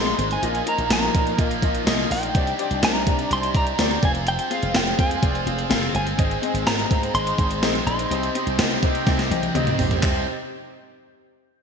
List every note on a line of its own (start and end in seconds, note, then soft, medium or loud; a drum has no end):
0.00 0.12 A#1 medium
0.00 0.41 G#2 medium
0.00 0.43 D#3 medium
0.00 0.18 G#3 loud
0.00 0.39 G#3 medium
0.00 0.44 G#3 medium
0.00 0.18 C4 loud
0.00 0.41 C4 medium
0.00 0.18 D#4 loud
0.00 3.99 D#4 medium
0.00 0.19 G#4 medium
0.00 0.19 C5 loud
0.00 0.32 C6 loud
0.07 closed hi-hat soft
0.18 0.36 G#1 medium
0.18 0.34 G#3 medium
0.18 0.34 C4 medium
0.18 0.34 D#4 medium
0.18 0.35 G#4 medium
0.18 0.35 C5 medium
0.18 closed hi-hat medium
0.31 0.68 G#5 medium
0.31 closed hi-hat medium
0.42 0.60 A#1 loud
0.42 1.37 A#2 medium
0.42 2.33 F3 medium
0.42 1.38 F3 medium
0.42 0.58 A#3 loud
0.42 2.33 A#3 medium
0.42 1.39 A#3 medium
0.42 0.59 D#4 medium
0.42 0.59 F4 loud
0.42 0.59 A#4 medium
0.42 0.59 D#5 loud
0.42 closed hi-hat medium
0.55 closed hi-hat medium
0.66 0.82 A#3 loud
0.66 0.82 D#4 medium
0.66 0.83 F4 medium
0.66 0.83 A#4 medium
0.66 0.83 D#5 loud
0.66 0.92 A#5 medium
0.66 closed hi-hat medium
0.78 0.87 A#1 medium
0.78 closed hi-hat medium
0.90 1.08 A#1 loud
0.90 1.06 A#3 medium
0.90 1.07 D#4 medium
0.90 1.07 F4 medium
0.90 1.07 A#4 medium
0.90 1.07 D#5 medium
0.90 1.37 A#5 medium
0.90 snare loud
0.90 closed hi-hat loud
0.90 tambourine medium
1.03 closed hi-hat medium
1.14 1.32 A#2 loud
1.14 1.30 A#3 medium
1.14 1.30 D#4 medium
1.14 1.31 F4 medium
1.14 1.31 A#4 medium
1.14 1.31 D#5 medium
1.14 kick loud
1.14 closed hi-hat medium
1.27 closed hi-hat medium
1.38 1.56 A#1 loud
1.38 1.85 A#2 medium
1.38 1.86 F3 medium
1.38 1.54 A#3 medium
1.38 1.88 A#3 medium
1.38 1.55 D#4 medium
1.38 1.55 F4 medium
1.38 1.55 A#4 medium
1.38 1.55 D#5 medium
1.38 kick loud
1.38 closed hi-hat medium
1.51 closed hi-hat medium
1.62 1.80 A#1 loud
1.62 1.78 A#3 medium
1.62 1.79 D#4 medium
1.62 1.79 F4 medium
1.62 1.79 A#4 medium
1.62 1.79 D#5 loud
1.62 kick medium
1.62 closed hi-hat medium
1.75 closed hi-hat medium
1.86 2.04 C2 loud
1.86 2.34 A#2 medium
1.86 2.35 F3 medium
1.86 2.02 A#3 loud
1.86 2.36 A#3 medium
1.86 2.02 D#4 loud
1.86 2.02 F4 loud
1.86 2.03 A#4 loud
1.86 2.03 D#5 loud
1.86 snare loud
1.86 closed hi-hat medium
1.86 tambourine medium
1.99 closed hi-hat soft
2.10 2.28 A#1 medium
2.10 2.26 A#3 medium
2.10 2.26 D#4 medium
2.10 2.27 F4 medium
2.10 2.27 A#4 medium
2.10 2.27 D#5 medium
2.10 2.84 G5 medium
2.10 open hi-hat medium
2.23 closed hi-hat medium
2.34 2.52 C2 loud
2.34 3.29 C3 medium
2.34 4.01 C3 medium
2.34 4.01 G3 medium
2.34 3.30 G3 medium
2.34 3.32 C4 medium
2.34 2.51 D4 loud
2.34 4.01 D4 medium
2.34 2.51 D#4 medium
2.34 2.51 G4 loud
2.34 2.51 C5 medium
2.34 2.51 D5 loud
2.34 kick loud
2.34 closed hi-hat medium
2.47 closed hi-hat medium
2.58 2.75 D4 loud
2.58 2.75 D#4 medium
2.58 2.75 G4 medium
2.58 2.75 C5 medium
2.58 2.75 D5 loud
2.58 closed hi-hat medium
2.71 2.79 C2 loud
2.71 closed hi-hat medium
2.82 3.08 C2 loud
2.82 2.98 D4 medium
2.82 2.99 D#4 medium
2.82 2.99 G4 medium
2.82 2.99 C5 medium
2.82 2.99 D5 medium
2.82 3.32 A#5 loud
2.82 snare loud
2.82 closed hi-hat loud
2.82 tambourine medium
2.95 closed hi-hat medium
3.06 3.24 C3 medium
3.06 3.22 D4 medium
3.06 3.22 D#4 medium
3.06 3.23 G4 medium
3.06 3.23 C5 medium
3.06 3.23 D5 medium
3.06 kick loud
3.06 closed hi-hat medium
3.19 closed hi-hat medium
3.30 3.48 C2 loud
3.30 3.77 C3 medium
3.30 3.78 G3 medium
3.30 3.80 C4 medium
3.30 3.46 D4 medium
3.30 3.46 D#4 medium
3.30 3.47 G4 medium
3.30 3.47 C5 medium
3.30 3.47 D5 medium
3.30 3.56 C6 loud
3.30 closed hi-hat medium
3.43 closed hi-hat medium
3.54 3.72 C2 loud
3.54 3.71 D4 medium
3.54 3.71 D#4 medium
3.54 3.71 G4 medium
3.54 3.71 C5 medium
3.54 3.71 D5 medium
3.54 4.00 A#5 loud
3.54 kick loud
3.54 closed hi-hat medium
3.67 closed hi-hat medium
3.78 3.96 D2 loud
3.78 4.02 C3 medium
3.78 4.03 G3 medium
3.78 4.02 C4 medium
3.78 3.94 D4 loud
3.78 3.95 D#4 medium
3.78 3.95 G4 medium
3.78 3.95 C5 medium
3.78 3.95 D5 loud
3.78 snare loud
3.78 closed hi-hat medium
3.78 tambourine medium
3.91 closed hi-hat soft
4.02 4.37 F1 loud
4.02 4.51 F3 medium
4.02 6.17 G#3 medium
4.02 4.41 C4 medium
4.02 4.52 C4 medium
4.02 9.99 C4 medium
4.02 4.41 F4 medium
4.02 4.49 F4 medium
4.02 6.17 F4 medium
4.02 4.41 G#4 medium
4.02 4.41 C5 medium
4.02 4.42 F5 medium
4.02 4.11 G#5 loud
4.02 kick loud
4.02 closed hi-hat medium
4.15 closed hi-hat medium
4.27 4.52 G5 loud
4.27 closed hi-hat medium
4.39 closed hi-hat medium
4.50 4.66 C4 loud
4.50 5.23 C4 soft
4.50 4.66 F4 loud
4.50 5.23 F4 medium
4.50 4.67 G#4 medium
4.50 4.67 C5 medium
4.50 4.67 F5 loud
4.50 4.76 F5 medium
4.50 closed hi-hat medium
4.63 4.71 F1 loud
4.63 closed hi-hat medium
4.74 4.92 F1 loud
4.74 4.90 C4 medium
4.74 4.90 F4 medium
4.74 4.90 G#4 medium
4.74 4.91 C5 medium
4.74 4.91 F5 medium
4.74 4.98 G5 loud
4.74 snare loud
4.74 closed hi-hat loud
4.74 tambourine medium
4.87 closed hi-hat medium
4.98 5.16 F2 loud
4.98 5.14 C4 medium
4.98 5.14 F4 medium
4.98 5.15 G#4 medium
4.98 5.15 C5 medium
4.98 5.15 F5 medium
4.98 5.67 G#5 medium
4.98 kick loud
4.98 closed hi-hat medium
5.11 closed hi-hat medium
5.22 5.40 F1 loud
5.22 5.69 F3 medium
5.22 5.38 C4 medium
5.22 5.71 C4 medium
5.22 5.38 F4 medium
5.22 5.71 F4 medium
5.22 5.39 G#4 medium
5.22 5.39 C5 medium
5.22 5.39 D5 medium
5.22 kick loud
5.22 closed hi-hat medium
5.35 closed hi-hat medium
5.46 5.64 F1 loud
5.46 5.62 C4 medium
5.46 5.62 F4 medium
5.46 5.63 G#4 medium
5.46 5.63 C5 medium
5.46 5.63 F5 medium
5.46 closed hi-hat medium
5.59 closed hi-hat medium
5.70 5.88 F1 medium
5.70 6.18 F3 medium
5.70 5.86 C4 loud
5.70 6.21 C4 medium
5.70 5.86 F4 loud
5.70 6.20 F4 medium
5.70 5.86 G#4 loud
5.70 5.86 C5 loud
5.70 5.87 F5 loud
5.70 snare loud
5.70 closed hi-hat medium
5.70 tambourine medium
5.83 closed hi-hat soft
5.94 6.12 G1 loud
5.94 6.10 C4 medium
5.94 6.10 F4 medium
5.94 6.10 G#4 medium
5.94 6.10 C5 medium
5.94 6.11 F5 medium
5.94 6.63 G#5 loud
5.94 closed hi-hat medium
6.07 closed hi-hat medium
6.17 6.36 G#1 loud
6.17 7.13 G#2 medium
6.17 7.15 D#3 medium
6.17 8.09 G#3 medium
6.17 6.34 C4 loud
6.17 6.34 D#4 medium
6.17 9.99 D#4 loud
6.17 6.34 G#4 medium
6.17 6.34 C5 loud
6.17 6.35 D#5 loud
6.17 kick loud
6.17 closed hi-hat medium
6.21 7.16 G#3 medium
6.31 closed hi-hat medium
6.42 6.58 C4 loud
6.42 6.58 D#4 medium
6.42 6.58 G#4 medium
6.42 6.59 C5 medium
6.42 6.59 D#5 loud
6.42 closed hi-hat medium
6.54 6.63 G#1 loud
6.54 closed hi-hat medium
6.65 6.83 G#1 loud
6.65 6.82 C4 medium
6.65 6.82 D#4 medium
6.65 6.82 G#4 medium
6.65 6.82 C5 medium
6.65 6.83 D#5 medium
6.65 7.14 A#5 loud
6.65 snare loud
6.65 closed hi-hat loud
6.65 tambourine medium
6.79 closed hi-hat medium
6.90 7.08 G#2 loud
6.90 7.06 C4 medium
6.90 7.06 D#4 medium
6.90 7.07 G#4 medium
6.90 7.07 C5 medium
6.90 7.07 F5 medium
6.90 kick loud
6.90 closed hi-hat medium
7.03 closed hi-hat medium
7.14 7.32 G#1 loud
7.14 7.61 G#2 medium
7.14 7.63 D#3 medium
7.14 7.63 G#3 medium
7.14 7.30 C4 medium
7.14 7.30 D#4 medium
7.14 7.30 G#4 medium
7.14 7.30 C5 medium
7.14 7.31 D#5 medium
7.14 7.86 C6 loud
7.14 closed hi-hat medium
7.27 closed hi-hat medium
7.38 7.62 G#1 loud
7.38 7.54 C4 medium
7.38 7.54 D#4 medium
7.38 7.55 G#4 medium
7.38 7.55 C5 medium
7.38 7.55 D#5 medium
7.38 kick loud
7.38 closed hi-hat medium
7.51 closed hi-hat medium
7.62 7.80 A#1 loud
7.62 8.11 G#2 medium
7.62 8.10 D#3 medium
7.62 8.12 G#3 medium
7.62 7.78 C4 loud
7.62 7.78 D#4 medium
7.62 7.79 G#4 loud
7.62 7.79 C5 medium
7.62 7.79 D#5 loud
7.62 snare loud
7.62 closed hi-hat medium
7.62 tambourine medium
7.75 closed hi-hat soft
7.86 8.04 A#1 loud
7.86 8.02 C4 medium
7.86 8.02 D#4 medium
7.86 8.03 G#4 medium
7.86 8.03 C5 medium
7.86 8.03 D5 medium
7.86 9.51 C6 loud
7.86 closed hi-hat medium
7.99 closed hi-hat medium
8.10 8.28 C2 loud
8.10 9.05 C3 medium
8.10 10.01 C3 medium
8.10 9.07 G3 medium
8.10 8.26 C4 loud
8.10 9.08 C4 medium
8.10 8.27 D#4 medium
8.10 8.27 G4 loud
8.10 10.01 G4 medium
8.10 8.27 C5 medium
8.10 8.27 D#5 loud
8.10 closed hi-hat medium
8.23 closed hi-hat medium
8.35 8.51 C4 loud
8.35 8.51 D#4 medium
8.35 8.51 G4 medium
8.35 8.51 C5 medium
8.35 8.51 D#5 loud
8.35 closed hi-hat medium
8.47 8.55 C2 medium
8.47 closed hi-hat medium
8.58 8.76 C2 loud
8.58 8.75 C4 medium
8.58 8.75 D#4 medium
8.58 8.75 G4 medium
8.58 8.75 C5 medium
8.58 8.75 D#5 loud
8.58 snare loud
8.58 closed hi-hat loud
8.58 tambourine medium
8.71 closed hi-hat medium
8.82 9.00 C3 loud
8.82 8.99 C4 medium
8.82 8.99 D#4 medium
8.82 8.99 G4 medium
8.82 8.99 C5 medium
8.82 8.99 D#5 loud
8.82 kick loud
8.82 closed hi-hat medium
8.95 closed hi-hat medium
9.06 9.24 C2 loud
9.06 9.53 C3 medium
9.06 9.56 G3 medium
9.06 9.22 C4 medium
9.06 9.56 C4 medium
9.06 9.23 D#4 medium
9.06 9.23 G4 medium
9.06 9.23 C5 medium
9.06 9.23 D#5 loud
9.06 kick loud
9.06 snare medium
9.06 closed hi-hat medium
9.19 snare medium
9.19 closed hi-hat medium
9.30 9.48 C2 medium
9.30 9.47 C4 medium
9.30 9.47 D#4 medium
9.30 9.47 G4 medium
9.30 9.47 C5 medium
9.30 9.47 D#5 loud
9.30 9.53 G5 medium
9.30 closed hi-hat medium
9.30 high tom medium
9.43 closed hi-hat medium
9.43 high tom medium
9.55 9.72 D2 loud
9.55 10.01 C3 medium
9.55 10.03 G3 medium
9.55 9.71 C4 loud
9.55 10.04 C4 medium
9.55 9.71 D#4 loud
9.55 9.71 G4 loud
9.55 9.71 C5 loud
9.55 9.71 D#5 loud
9.55 9.77 F5 medium
9.55 closed hi-hat medium
9.55 mid tom medium
9.67 closed hi-hat soft
9.67 mid tom medium
9.79 9.96 A#1 loud
9.79 9.95 C4 medium
9.79 9.95 D#4 medium
9.79 9.95 G4 medium
9.79 9.95 C5 medium
9.79 9.95 D#5 loud
9.79 floor tom loud
9.79 open hi-hat medium
9.91 closed hi-hat medium
9.91 floor tom loud
10.02 10.25 C2 loud
10.02 10.22 C3 medium
10.02 10.22 G3 loud
10.02 10.23 C4 loud
10.02 10.25 D#4 medium
10.02 10.25 G4 medium
10.02 10.25 C5 medium
10.02 10.25 D#5 medium
10.02 kick loud
10.02 clap medium